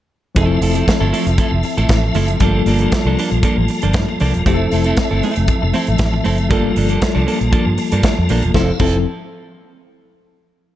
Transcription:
0.35 F1 F3 A3 C4 E4 A4 E5 A5, kick, closed hi-hat
0.61 F1 F3 A3 E4 A4, open hi-hat
0.75 F3 A3 E4 A4, closed hi-hat
0.87 muted clean electric guitar stroke, kick, snare, closed hi-hat
1.00 G1 F3 A3 E4 A4
1.12 F3 A3 E4 A4, open hi-hat
1.27 F1, muted clean electric guitar stroke, closed hi-hat
1.38 F3 A3 E4 A4, kick, closed hi-hat
1.52 F1, muted clean electric guitar stroke
1.63 muted clean electric guitar stroke, open hi-hat
1.78 A1 F3 A3 E4 A4, closed hi-hat
1.89 A1, kick, snare, closed hi-hat
2.03 muted clean electric guitar stroke
2.15 F#1 F3 A3 E4 A4, open hi-hat
2.28 muted clean electric guitar stroke, closed hi-hat
2.39 G1 F3 G3 A3 A#3 D4 F4 A4, kick, closed hi-hat
2.47 A#3
2.66 G1 F3 A#3 D4 A4, open hi-hat
2.79 F3 A#3 D4 A4, closed hi-hat
2.92 muted clean electric guitar stroke, kick, snare, closed hi-hat
3.05 C2 F3 A#3 D4 A4
3.18 F3 A#3 D4 A4, open hi-hat
3.31 A#1, muted clean electric guitar stroke, closed hi-hat
3.43 F3 A#3 D4 A4, kick, closed hi-hat
3.58 A1, muted clean electric guitar stroke
3.68 muted clean electric guitar stroke, open hi-hat
3.82 G1 F3 A#3 D4 A4, closed hi-hat
3.93 G2, kick, snare, closed hi-hat
4.09 muted clean electric guitar stroke
4.20 C2 F3 A#3 D4 A4, open hi-hat
4.34 E1, muted clean electric guitar stroke, closed hi-hat
4.45 F1 F3 A3 C4 E4 G4 A4 E5 A5, kick, closed hi-hat
4.54 A4
4.71 F1 A3 C4 E4 A4, open hi-hat
4.84 A3 C4 E4 A4, closed hi-hat
4.97 muted clean electric guitar stroke, kick, snare, closed hi-hat
5.11 G1 A3 C4 E4 A4
5.23 A3 C4 E4 A4, open hi-hat
5.36 F1, muted clean electric guitar stroke, closed hi-hat
5.48 muted clean electric guitar stroke, kick, closed hi-hat
5.62 F1, muted clean electric guitar stroke
5.74 A3 C4 E4 A4, open hi-hat
5.87 A1, muted clean electric guitar stroke, closed hi-hat
5.98 A1, kick, snare, closed hi-hat
6.14 muted clean electric guitar stroke
6.24 F#1 A3 C4 E4 A4, open hi-hat
6.38 muted clean electric guitar stroke, closed hi-hat
6.49 G1 F3 G3 A3 A#3 D4 F4 A4, kick, closed hi-hat
6.57 A#3
6.76 G1 F3 A#3 D4 A4, open hi-hat
6.89 F3 A#3 D4 A4, closed hi-hat
7.02 muted clean electric guitar stroke, kick, snare, closed hi-hat
7.15 C2 F3 A#3 D4 A4
7.27 F3 A#3 D4 A4, open hi-hat
7.40 A#1, muted clean electric guitar stroke, closed hi-hat
7.51 F3 A#3 D4 A4, kick, closed hi-hat
7.66 G2, muted clean electric guitar stroke
7.78 muted clean electric guitar stroke, open hi-hat
7.92 G2 F3 A#3 D4 A4, closed hi-hat
8.03 kick, snare, closed hi-hat
8.18 F2, muted clean electric guitar stroke
8.29 A#1 F3 A#3 D4 A4, open hi-hat
8.43 E1, muted clean electric guitar stroke, closed hi-hat
8.54 F1 F3 C4 E4 A4 F5, kick, snare
8.79 F1 F3 C4 E4 A4, kick, crash

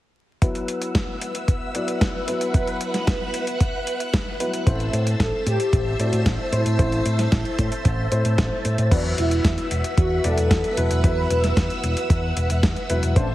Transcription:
0.42 F#3 B3 E4 B4 E5 F#5 E6, kick, closed hi-hat
0.55 closed hi-hat
0.68 closed hi-hat
0.82 closed hi-hat
0.95 kick, snare, closed hi-hat
1.21 closed hi-hat
1.35 closed hi-hat
1.48 kick, closed hi-hat
1.75 F#3 B3 E4 D5, closed hi-hat
1.88 closed hi-hat
2.01 kick, snare, closed hi-hat
2.28 F#3 B3 E4 B4, closed hi-hat
2.41 closed hi-hat
2.54 F#3 B3 E4 B4 F#6, kick, closed hi-hat
2.67 closed hi-hat
2.81 closed hi-hat
2.94 snare, closed hi-hat
3.07 kick, snare, closed hi-hat
3.34 closed hi-hat
3.47 closed hi-hat
3.60 kick, closed hi-hat
3.87 closed hi-hat
4.00 closed hi-hat
4.14 kick, snare, closed hi-hat
4.40 F#3 B3 E4 B4, closed hi-hat
4.54 closed hi-hat
4.67 A1 A3 C4 E4 C5 E5 A5 E6, kick, closed hi-hat
4.80 closed hi-hat
4.93 A2, closed hi-hat
5.07 closed hi-hat
5.20 A1 A4, kick, snare, closed hi-hat
5.46 A2 G4, closed hi-hat
5.60 closed hi-hat
5.73 A1, kick, closed hi-hat
5.99 A2 A3 C4 E4 F#4 D5, closed hi-hat
6.13 A2, closed hi-hat
6.26 A1, kick, snare, closed hi-hat
6.52 A2 A3 C4 E4 C5, closed hi-hat
6.66 A2, closed hi-hat
6.79 A1 A3 C4 E4 C5, kick, closed hi-hat
6.92 closed hi-hat
7.05 A2, closed hi-hat
7.19 snare, closed hi-hat
7.32 A1, kick, snare, closed hi-hat
7.45 closed hi-hat
7.59 A2, kick, closed hi-hat
7.72 closed hi-hat
7.85 A1, kick, closed hi-hat
8.12 A2 A3 C4 E4 C5, closed hi-hat
8.25 A2, closed hi-hat
8.38 A1, kick, snare, closed hi-hat
8.65 A2, closed hi-hat
8.78 A2, closed hi-hat
8.91 E2 F#3 B3 D4 E4 B4 E5 F#5 E6, kick, closed hi-hat, crash
9.18 E1 E4, closed hi-hat
9.31 closed hi-hat
9.45 E2, kick, snare, closed hi-hat
9.58 closed hi-hat
9.71 E1, closed hi-hat
9.84 closed hi-hat
9.98 E2 F#4, kick, closed hi-hat
10.24 E1 F#3 B3 E4 A4 D5, closed hi-hat
10.38 E1, closed hi-hat
10.51 E2, kick, snare, closed hi-hat
10.64 closed hi-hat
10.77 E1 F#3 B3 E4 B4, closed hi-hat
10.91 E1, closed hi-hat
11.04 E2 F#3 B3 E4 B4, kick, closed hi-hat
11.30 E1, closed hi-hat
11.44 snare, closed hi-hat
11.57 E2, kick, snare, closed hi-hat
11.70 closed hi-hat
11.83 E1, closed hi-hat
11.97 closed hi-hat
12.10 E2, kick, closed hi-hat
12.37 E1, closed hi-hat
12.50 E1, closed hi-hat
12.63 E2, kick, snare, closed hi-hat
12.76 closed hi-hat
12.90 E1 F#3 B3 E4 B4, closed hi-hat
13.03 E1, closed hi-hat
13.16 A1 A3 C4 D4 E4 C5 E5 A5 E6, kick, closed hi-hat

